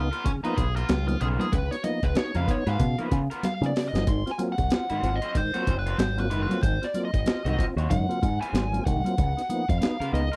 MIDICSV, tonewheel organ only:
0, 0, Header, 1, 2, 480
1, 0, Start_track
1, 0, Tempo, 637620
1, 1149, Time_signature, 4, 2, 24, 8
1, 7800, End_track
2, 0, Start_track
2, 0, Title_t, "Tonewheel organ"
2, 0, Program_c, 0, 16
2, 182, Note_on_c, 0, 49, 72
2, 308, Note_off_c, 0, 49, 0
2, 325, Note_on_c, 0, 58, 66
2, 326, Note_on_c, 0, 53, 67
2, 328, Note_on_c, 0, 59, 64
2, 329, Note_on_c, 0, 63, 78
2, 411, Note_off_c, 0, 53, 0
2, 411, Note_off_c, 0, 58, 0
2, 412, Note_off_c, 0, 59, 0
2, 413, Note_off_c, 0, 63, 0
2, 423, Note_on_c, 0, 59, 44
2, 484, Note_off_c, 0, 59, 0
2, 799, Note_on_c, 0, 53, 74
2, 802, Note_on_c, 0, 58, 60
2, 803, Note_on_c, 0, 59, 61
2, 803, Note_on_c, 0, 63, 70
2, 887, Note_off_c, 0, 53, 0
2, 889, Note_off_c, 0, 58, 0
2, 889, Note_off_c, 0, 59, 0
2, 889, Note_off_c, 0, 63, 0
2, 900, Note_on_c, 0, 49, 55
2, 1027, Note_off_c, 0, 49, 0
2, 1042, Note_on_c, 0, 53, 73
2, 1043, Note_on_c, 0, 58, 67
2, 1046, Note_on_c, 0, 59, 65
2, 1049, Note_on_c, 0, 63, 88
2, 1129, Note_off_c, 0, 53, 0
2, 1129, Note_off_c, 0, 58, 0
2, 1131, Note_off_c, 0, 59, 0
2, 1132, Note_off_c, 0, 63, 0
2, 1141, Note_on_c, 0, 49, 61
2, 1267, Note_off_c, 0, 49, 0
2, 1286, Note_on_c, 0, 59, 43
2, 1287, Note_on_c, 0, 63, 47
2, 1328, Note_off_c, 0, 59, 0
2, 1328, Note_off_c, 0, 63, 0
2, 1381, Note_on_c, 0, 53, 65
2, 1381, Note_on_c, 0, 58, 60
2, 1384, Note_on_c, 0, 59, 65
2, 1386, Note_on_c, 0, 63, 77
2, 1507, Note_off_c, 0, 53, 0
2, 1507, Note_off_c, 0, 58, 0
2, 1509, Note_off_c, 0, 59, 0
2, 1509, Note_off_c, 0, 63, 0
2, 1619, Note_on_c, 0, 59, 69
2, 1622, Note_on_c, 0, 63, 73
2, 1746, Note_off_c, 0, 59, 0
2, 1747, Note_off_c, 0, 63, 0
2, 1762, Note_on_c, 0, 49, 54
2, 1848, Note_off_c, 0, 49, 0
2, 1863, Note_on_c, 0, 59, 76
2, 1866, Note_on_c, 0, 63, 78
2, 1988, Note_off_c, 0, 59, 0
2, 1989, Note_off_c, 0, 63, 0
2, 2104, Note_on_c, 0, 49, 60
2, 2228, Note_off_c, 0, 49, 0
2, 2245, Note_on_c, 0, 53, 64
2, 2246, Note_on_c, 0, 59, 66
2, 2247, Note_on_c, 0, 58, 66
2, 2248, Note_on_c, 0, 63, 75
2, 2328, Note_off_c, 0, 59, 0
2, 2329, Note_off_c, 0, 63, 0
2, 2330, Note_off_c, 0, 53, 0
2, 2331, Note_off_c, 0, 58, 0
2, 2337, Note_on_c, 0, 59, 42
2, 2338, Note_on_c, 0, 63, 45
2, 2400, Note_off_c, 0, 59, 0
2, 2400, Note_off_c, 0, 63, 0
2, 2722, Note_on_c, 0, 58, 58
2, 2723, Note_on_c, 0, 53, 71
2, 2725, Note_on_c, 0, 59, 56
2, 2725, Note_on_c, 0, 63, 78
2, 2808, Note_off_c, 0, 58, 0
2, 2809, Note_off_c, 0, 53, 0
2, 2810, Note_off_c, 0, 59, 0
2, 2810, Note_off_c, 0, 63, 0
2, 2821, Note_on_c, 0, 49, 51
2, 2946, Note_off_c, 0, 49, 0
2, 2964, Note_on_c, 0, 53, 68
2, 2965, Note_on_c, 0, 58, 70
2, 2967, Note_on_c, 0, 59, 67
2, 2969, Note_on_c, 0, 63, 84
2, 3049, Note_off_c, 0, 53, 0
2, 3050, Note_off_c, 0, 58, 0
2, 3050, Note_off_c, 0, 59, 0
2, 3052, Note_off_c, 0, 63, 0
2, 3066, Note_on_c, 0, 44, 55
2, 3068, Note_on_c, 0, 51, 59
2, 3189, Note_off_c, 0, 44, 0
2, 3190, Note_off_c, 0, 51, 0
2, 3209, Note_on_c, 0, 65, 48
2, 3211, Note_on_c, 0, 60, 43
2, 3249, Note_off_c, 0, 60, 0
2, 3249, Note_off_c, 0, 65, 0
2, 3297, Note_on_c, 0, 54, 66
2, 3301, Note_on_c, 0, 65, 74
2, 3302, Note_on_c, 0, 58, 54
2, 3302, Note_on_c, 0, 60, 65
2, 3424, Note_off_c, 0, 54, 0
2, 3426, Note_off_c, 0, 65, 0
2, 3427, Note_off_c, 0, 58, 0
2, 3427, Note_off_c, 0, 60, 0
2, 3546, Note_on_c, 0, 60, 74
2, 3549, Note_on_c, 0, 65, 72
2, 3669, Note_off_c, 0, 60, 0
2, 3670, Note_off_c, 0, 65, 0
2, 3694, Note_on_c, 0, 44, 58
2, 3697, Note_on_c, 0, 51, 60
2, 3774, Note_off_c, 0, 44, 0
2, 3775, Note_off_c, 0, 51, 0
2, 3791, Note_on_c, 0, 60, 66
2, 3796, Note_on_c, 0, 65, 85
2, 3911, Note_off_c, 0, 60, 0
2, 3914, Note_off_c, 0, 65, 0
2, 4034, Note_on_c, 0, 44, 61
2, 4035, Note_on_c, 0, 51, 63
2, 4152, Note_off_c, 0, 44, 0
2, 4153, Note_off_c, 0, 51, 0
2, 4176, Note_on_c, 0, 58, 67
2, 4177, Note_on_c, 0, 54, 62
2, 4181, Note_on_c, 0, 60, 65
2, 4181, Note_on_c, 0, 65, 73
2, 4255, Note_off_c, 0, 54, 0
2, 4255, Note_off_c, 0, 58, 0
2, 4257, Note_off_c, 0, 60, 0
2, 4257, Note_off_c, 0, 65, 0
2, 4277, Note_on_c, 0, 60, 46
2, 4279, Note_on_c, 0, 65, 47
2, 4330, Note_off_c, 0, 60, 0
2, 4330, Note_off_c, 0, 65, 0
2, 4647, Note_on_c, 0, 54, 76
2, 4648, Note_on_c, 0, 58, 64
2, 4651, Note_on_c, 0, 65, 76
2, 4652, Note_on_c, 0, 60, 65
2, 4731, Note_off_c, 0, 54, 0
2, 4731, Note_off_c, 0, 58, 0
2, 4732, Note_off_c, 0, 65, 0
2, 4733, Note_off_c, 0, 60, 0
2, 4750, Note_on_c, 0, 44, 58
2, 4751, Note_on_c, 0, 51, 58
2, 4871, Note_off_c, 0, 44, 0
2, 4871, Note_off_c, 0, 51, 0
2, 4895, Note_on_c, 0, 54, 75
2, 4896, Note_on_c, 0, 58, 68
2, 4896, Note_on_c, 0, 60, 64
2, 4897, Note_on_c, 0, 65, 83
2, 4974, Note_off_c, 0, 54, 0
2, 4975, Note_off_c, 0, 58, 0
2, 4975, Note_off_c, 0, 60, 0
2, 4975, Note_off_c, 0, 65, 0
2, 4991, Note_on_c, 0, 51, 59
2, 4994, Note_on_c, 0, 44, 55
2, 5111, Note_off_c, 0, 51, 0
2, 5112, Note_off_c, 0, 44, 0
2, 5134, Note_on_c, 0, 60, 45
2, 5134, Note_on_c, 0, 65, 49
2, 5171, Note_off_c, 0, 60, 0
2, 5171, Note_off_c, 0, 65, 0
2, 5230, Note_on_c, 0, 54, 73
2, 5232, Note_on_c, 0, 60, 58
2, 5233, Note_on_c, 0, 58, 62
2, 5233, Note_on_c, 0, 65, 85
2, 5350, Note_off_c, 0, 54, 0
2, 5352, Note_off_c, 0, 58, 0
2, 5352, Note_off_c, 0, 60, 0
2, 5352, Note_off_c, 0, 65, 0
2, 5473, Note_on_c, 0, 60, 65
2, 5475, Note_on_c, 0, 65, 86
2, 5592, Note_off_c, 0, 60, 0
2, 5593, Note_off_c, 0, 65, 0
2, 5621, Note_on_c, 0, 44, 64
2, 5621, Note_on_c, 0, 51, 59
2, 5697, Note_off_c, 0, 44, 0
2, 5697, Note_off_c, 0, 51, 0
2, 5714, Note_on_c, 0, 60, 71
2, 5719, Note_on_c, 0, 65, 79
2, 5832, Note_off_c, 0, 60, 0
2, 5835, Note_off_c, 0, 65, 0
2, 5949, Note_on_c, 0, 51, 64
2, 5950, Note_on_c, 0, 44, 68
2, 6070, Note_off_c, 0, 44, 0
2, 6070, Note_off_c, 0, 51, 0
2, 6088, Note_on_c, 0, 54, 67
2, 6089, Note_on_c, 0, 58, 65
2, 6089, Note_on_c, 0, 60, 68
2, 6092, Note_on_c, 0, 65, 77
2, 6171, Note_off_c, 0, 54, 0
2, 6171, Note_off_c, 0, 60, 0
2, 6172, Note_off_c, 0, 58, 0
2, 6173, Note_off_c, 0, 65, 0
2, 6189, Note_on_c, 0, 60, 44
2, 6191, Note_on_c, 0, 65, 50
2, 6245, Note_off_c, 0, 60, 0
2, 6246, Note_off_c, 0, 65, 0
2, 6568, Note_on_c, 0, 54, 71
2, 6570, Note_on_c, 0, 60, 59
2, 6572, Note_on_c, 0, 58, 59
2, 6574, Note_on_c, 0, 65, 83
2, 6651, Note_off_c, 0, 54, 0
2, 6652, Note_off_c, 0, 60, 0
2, 6653, Note_off_c, 0, 58, 0
2, 6654, Note_off_c, 0, 65, 0
2, 6669, Note_on_c, 0, 51, 58
2, 6670, Note_on_c, 0, 44, 57
2, 6790, Note_off_c, 0, 44, 0
2, 6790, Note_off_c, 0, 51, 0
2, 6813, Note_on_c, 0, 58, 64
2, 6814, Note_on_c, 0, 54, 77
2, 6815, Note_on_c, 0, 60, 63
2, 6816, Note_on_c, 0, 65, 82
2, 6893, Note_off_c, 0, 58, 0
2, 6894, Note_off_c, 0, 54, 0
2, 6894, Note_off_c, 0, 60, 0
2, 6895, Note_off_c, 0, 65, 0
2, 6908, Note_on_c, 0, 49, 60
2, 7030, Note_off_c, 0, 49, 0
2, 7053, Note_on_c, 0, 63, 49
2, 7054, Note_on_c, 0, 59, 43
2, 7091, Note_off_c, 0, 59, 0
2, 7091, Note_off_c, 0, 63, 0
2, 7145, Note_on_c, 0, 53, 75
2, 7148, Note_on_c, 0, 58, 66
2, 7148, Note_on_c, 0, 59, 60
2, 7150, Note_on_c, 0, 63, 71
2, 7268, Note_off_c, 0, 53, 0
2, 7270, Note_off_c, 0, 58, 0
2, 7270, Note_off_c, 0, 59, 0
2, 7271, Note_off_c, 0, 63, 0
2, 7382, Note_on_c, 0, 59, 70
2, 7388, Note_on_c, 0, 63, 78
2, 7507, Note_off_c, 0, 59, 0
2, 7510, Note_off_c, 0, 63, 0
2, 7533, Note_on_c, 0, 49, 63
2, 7614, Note_off_c, 0, 49, 0
2, 7621, Note_on_c, 0, 59, 76
2, 7624, Note_on_c, 0, 63, 75
2, 7747, Note_off_c, 0, 59, 0
2, 7748, Note_off_c, 0, 63, 0
2, 7800, End_track
0, 0, End_of_file